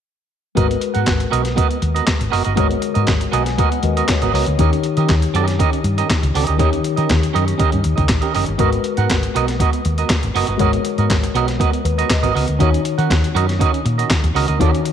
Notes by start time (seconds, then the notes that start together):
0.55 G#1 G#3 B3 F#4 A#4 B4 D#5, kick, closed hi-hat
0.69 muted clean electric guitar stroke, closed hi-hat
0.81 muted clean electric guitar stroke, closed hi-hat
0.94 G#2 B3 F#4 A#4 F#5, closed hi-hat
1.06 G#1, kick, snare, clap, closed hi-hat
1.19 muted clean electric guitar stroke, closed hi-hat
1.30 B1 B3 F#4 A#4 D#5, closed hi-hat
1.44 muted clean electric guitar stroke, snare, closed hi-hat
1.56 B3 F#4 A#4 D#5, kick, closed hi-hat
1.70 muted clean electric guitar stroke, closed hi-hat
1.81 D#2, muted clean electric guitar stroke, closed hi-hat
1.95 B3 F#4 A#4 D#5, closed hi-hat
2.07 muted clean electric guitar stroke, kick, snare, clap, closed hi-hat
2.20 G#1, muted clean electric guitar stroke, closed hi-hat
2.30 F#1 B3 F#4 A#4 D#5, open hi-hat
2.45 G1 B3 F#4 A#4 D#5, closed hi-hat
2.56 G#1 G#3 B3 F#4 A#4 C#5 D#5, kick, closed hi-hat
2.70 muted clean electric guitar stroke, closed hi-hat
2.80 muted clean electric guitar stroke, closed hi-hat
2.94 G#2 B3 F#4 A#4 D#5, closed hi-hat
3.07 G#1, kick, snare, clap, closed hi-hat
3.20 muted clean electric guitar stroke, closed hi-hat
3.31 B1 B3 F#4 A#4 D#5 G#5, closed hi-hat
3.45 muted clean electric guitar stroke, snare, closed hi-hat
3.58 B3 F#4 A#4 D#5 F#5, kick, closed hi-hat
3.71 muted clean electric guitar stroke, closed hi-hat
3.83 D#2 G#3 F#4 A#4 B4 D#5, muted clean electric guitar stroke, closed hi-hat
3.97 B3 F#4 A#4 D#5, closed hi-hat
4.08 C#5, muted clean electric guitar stroke, kick, snare, clap, closed hi-hat
4.22 G#1 B3 F#4 A#4 D#5, closed hi-hat
4.33 C#2 B3 F#4 A#4 C#5 D#5, open hi-hat
4.46 D2, closed hi-hat
4.58 D#2 D#3 C#4 D#4 G4 A#4 C#5 D#5, kick, closed hi-hat
4.73 muted clean electric guitar stroke, closed hi-hat
4.83 muted clean electric guitar stroke, closed hi-hat
4.97 D#3 C#4 G4 A#4 D#5, closed hi-hat
5.09 D#2, kick, snare, clap, closed hi-hat
5.22 muted clean electric guitar stroke, closed hi-hat
5.34 F#2 C#4 G4 A#4 D#5, closed hi-hat
5.48 muted clean electric guitar stroke, snare, closed hi-hat
5.59 C#4 G4 A#4 D#5, kick, closed hi-hat
5.72 muted clean electric guitar stroke, closed hi-hat
5.84 G2, muted clean electric guitar stroke, closed hi-hat
5.98 C#4 G4 A#4 D#5, closed hi-hat
6.10 kick, snare, clap, closed hi-hat
6.23 C#2, muted clean electric guitar stroke, closed hi-hat
6.35 C#2 C#4 G4 A#4 D#5, open hi-hat
6.47 D2 C#4 G4 A#4 D#5, closed hi-hat
6.58 D#2 D#3 C#4 D#4 G4 A#4 C#5 D#5, kick, closed hi-hat
6.72 muted clean electric guitar stroke, closed hi-hat
6.83 muted clean electric guitar stroke, closed hi-hat
6.96 D#3 C#4 G4 A#4 D#5, closed hi-hat
7.09 D#2, kick, snare, clap, closed hi-hat
7.22 muted clean electric guitar stroke, closed hi-hat
7.33 F#2 C#4 G4 A#4 D#5, closed hi-hat
7.47 muted clean electric guitar stroke, closed hi-hat
7.58 C#4 G4 A#4 D#5, kick, closed hi-hat
7.72 G2, muted clean electric guitar stroke, closed hi-hat
7.84 D#2, muted clean electric guitar stroke, closed hi-hat
7.96 C#2 C#4 G4 A#4 D#5, kick, closed hi-hat
8.08 A#1, muted clean electric guitar stroke, kick, snare, clap, closed hi-hat
8.21 C#4 G4 A#4 D#5, closed hi-hat
8.34 F#1 C#4 G4 A#4 D#5, open hi-hat
8.46 G1, muted clean electric guitar stroke, closed hi-hat
8.58 G#1 G#3 B3 F#4 A#4 B4 D#5, kick, closed hi-hat
8.72 muted clean electric guitar stroke, closed hi-hat
8.84 muted clean electric guitar stroke, closed hi-hat
8.97 G#2 B3 F#4 A#4 F#5, closed hi-hat
9.10 G#1, kick, snare, clap, closed hi-hat
9.22 muted clean electric guitar stroke, closed hi-hat
9.34 B1 B3 F#4 A#4 D#5, closed hi-hat
9.48 muted clean electric guitar stroke, snare, closed hi-hat
9.59 B3 F#4 A#4 D#5, kick, closed hi-hat
9.72 muted clean electric guitar stroke, closed hi-hat
9.85 D#2, muted clean electric guitar stroke, closed hi-hat
9.98 B3 F#4 A#4 D#5, closed hi-hat
10.09 muted clean electric guitar stroke, kick, snare, clap, closed hi-hat
10.23 G#1, muted clean electric guitar stroke, closed hi-hat
10.35 F#1 B3 F#4 A#4 D#5, open hi-hat
10.47 G1 B3 F#4 A#4 D#5, closed hi-hat
10.58 G#1 G#3 B3 F#4 A#4 C#5 D#5, kick, closed hi-hat
10.73 muted clean electric guitar stroke, closed hi-hat
10.85 muted clean electric guitar stroke, closed hi-hat
10.98 G#2 B3 F#4 A#4 D#5, closed hi-hat
11.10 G#1, kick, snare, clap, closed hi-hat
11.23 muted clean electric guitar stroke, closed hi-hat
11.35 B1 B3 F#4 A#4 D#5, closed hi-hat
11.48 muted clean electric guitar stroke, snare, closed hi-hat
11.59 B3 F#4 A#4 D#5, kick, closed hi-hat
11.72 muted clean electric guitar stroke, closed hi-hat
11.85 D#2 B4, muted clean electric guitar stroke, closed hi-hat
11.98 B3 F#4 A#4 D#5, closed hi-hat
12.10 D#5, kick, snare, clap, closed hi-hat
12.23 G#1 B3 F#4 A#4 D#5, closed hi-hat
12.34 C#2 B3 F#4 A#4 D#5, open hi-hat
12.48 D2, muted clean electric guitar stroke, closed hi-hat
12.58 D#2 D#3 C#4 D#4 F#4 A#4 C#5 D#5, kick, closed hi-hat
12.72 muted clean electric guitar stroke, closed hi-hat
12.84 muted clean electric guitar stroke, closed hi-hat
12.98 D#3 C#4 F#4 A#4 F#5, closed hi-hat
13.10 D#2, kick, snare, clap, closed hi-hat
13.23 muted clean electric guitar stroke, closed hi-hat
13.35 F#2 C#4 F#4 A#4 D#5, closed hi-hat
13.48 muted clean electric guitar stroke, snare, closed hi-hat
13.59 C#4 F#4 A#4 D#5, kick, closed hi-hat
13.73 muted clean electric guitar stroke, closed hi-hat
13.85 A#2, muted clean electric guitar stroke, closed hi-hat
13.98 C#4 F#4 A#4 D#5, closed hi-hat
14.10 muted clean electric guitar stroke, kick, snare, clap, closed hi-hat
14.24 D#2, muted clean electric guitar stroke, closed hi-hat
14.35 C#2 C#4 F#4 A#4 D#5, open hi-hat
14.48 D2 C#4 F#4 A#4 D#5, closed hi-hat
14.59 D#2 D#3 C#4 D#4 F#4 A#4 C#5 D#5, kick, closed hi-hat
14.73 muted clean electric guitar stroke, closed hi-hat
14.84 muted clean electric guitar stroke, closed hi-hat